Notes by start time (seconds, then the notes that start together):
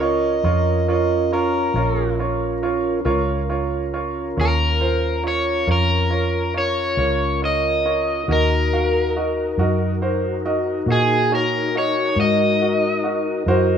Already playing: C#2 C#4 F4 A#4
0.00 F4 A#4 C#5 D#5
0.44 F2 F4 A#4 C#5
0.88 F4 A#4 C#5 D#5
1.32 F4 A#4 C#5
1.74 A#1 F4 A#4 C#5
2.19 F4 A#4 C#5
2.63 F4 A#4 C#5
3.05 C#2 C#4 F4 A#4 C#5
3.50 F4 A#4 C#5
3.93 F4 A#4 C#5
4.37 D#2 F4 A#4 C#5
4.41 A#4
4.81 F4 A#4 C5
5.23 F4 A#4 C#5
5.28 C#5
5.67 F2 F4 A#4 C#5
5.72 A#4
6.10 F4 A#4 C#5
6.54 F4 A#4 C#5
6.97 C#2 F4 A#4 C#5
7.42 F4 A#4 C#5 D#5
7.85 F4 A#4 C#5
8.27 D#2 D#4 F#4 A#4 D#5
8.32 A#4
8.73 F#4 A#4 F5
9.16 F#4 A#4 D#5
9.58 F#2 F#4 A#4 D#5
10.02 F#4 A#4 C5
10.45 F#4 A#4 D#5
10.86 A#2 F#4 A#4 D#5
10.92 G#4
11.32 F#4 A#4 C#5
11.75 F#4 A#4 C#5 D#5
12.16 G#2 F#4 A#4 D#5
12.20 D#5
12.62 F#4 A#4 D#5
13.04 F#4 A#4 D#5
13.45 F#2 E4 F#4 A#4 C5